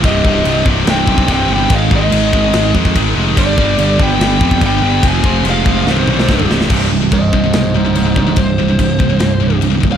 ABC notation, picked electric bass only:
X:1
M:4/4
L:1/8
Q:1/4=144
K:Cm
V:1 name="Picked electric bass" clef=bass
C,,, C,,, C,,, C,,, C,,, =B,,, C,,, G,,, | A,,, A,,, A,,, A,,, A,,, F,, A,,, F,,, | G,,, G,,, G,,, G,,, G,,, F,, G,,, G,,, | F,,, F,,, F,,, F,,, C,,, =B,,, C,,, C,,, |
C,,, C,,, C,,, C,,, =B,,, C,,, C,,, C,,, | C,,,2 C,,,2 C,,,2 C,,, C,,, |]